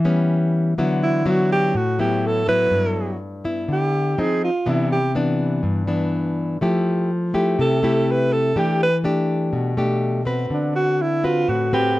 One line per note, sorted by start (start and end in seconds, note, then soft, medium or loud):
0.00 0.75 E3 medium
0.05 0.73 G3 medium
0.05 0.73 B3 medium
0.05 0.74 C#4 medium
0.78 1.72 D3 medium
0.78 1.22 F#3 medium
0.78 1.22 B3 medium
0.78 1.23 E4 medium
1.03 1.31 E4 medium
1.26 1.74 F#3 medium
1.26 1.74 B3 medium
1.26 1.74 E4 medium
1.26 1.52 F#4 medium
1.52 1.78 G4 medium
1.74 2.69 A2 medium
1.74 1.99 F#4 medium
1.99 2.43 F#3 medium
1.99 2.43 B3 medium
1.99 2.44 E4 medium
1.99 2.28 G4 medium
2.27 2.48 A4 medium
2.47 3.16 F#3 medium
2.47 3.17 B3 medium
2.47 3.17 E4 medium
2.47 3.17 B4 medium
2.71 3.66 G2 medium
3.44 4.13 B3 soft
3.44 4.14 E4 medium
3.68 4.15 D3 medium
3.72 4.21 G4 medium
4.18 4.49 F3 soft
4.18 4.49 C4 soft
4.18 4.49 D#4 medium
4.18 4.43 G#4 medium
4.44 4.71 F4 medium
4.66 5.61 C3 medium
4.66 4.97 E3 medium
4.66 4.97 B3 medium
4.66 4.98 D4 medium
4.66 4.91 E4 medium
4.92 5.14 G4 medium
5.15 5.84 E3 soft
5.15 5.84 B3 medium
5.15 5.84 D4 medium
5.63 6.58 G2 medium
5.87 6.57 E3 medium
5.87 6.57 B3 medium
5.87 6.57 D4 medium
6.61 7.56 F3 medium
6.61 7.09 A3 medium
6.61 7.10 E4 medium
6.61 7.10 G4 medium
7.34 7.79 A3 medium
7.34 7.78 E4 medium
7.34 7.79 G4 medium
7.59 8.53 C3 medium
7.59 8.13 A4 medium
7.83 8.52 A3 medium
7.83 8.52 E4 medium
7.83 8.52 G4 medium
8.11 8.34 B4 medium
8.33 8.60 A4 medium
8.56 9.50 E3 medium
8.56 8.87 A3 medium
8.56 8.87 D4 soft
8.56 8.87 G4 medium
8.56 8.81 G4 medium
8.83 8.96 B4 medium
9.04 9.73 A3 medium
9.04 9.73 D4 medium
9.04 9.74 G4 medium
9.53 10.47 B2 medium
9.77 10.22 A3 medium
9.77 10.22 D4 medium
9.77 10.22 G4 medium
10.25 11.19 C4 medium
10.25 11.19 F#4 medium
10.25 11.19 B4 medium
10.50 11.45 D3 medium
10.50 10.74 D4 medium
10.75 11.03 F#4 medium
11.02 11.26 E4 medium
11.23 11.68 C4 medium
11.23 11.51 F4 medium
11.23 11.68 F#4 medium
11.23 11.68 B4 medium
11.48 12.00 A2 medium
11.48 11.72 F#4 medium
11.73 12.00 C4 medium
11.73 12.00 F#4 medium
11.73 12.00 G4 medium
11.73 12.00 B4 medium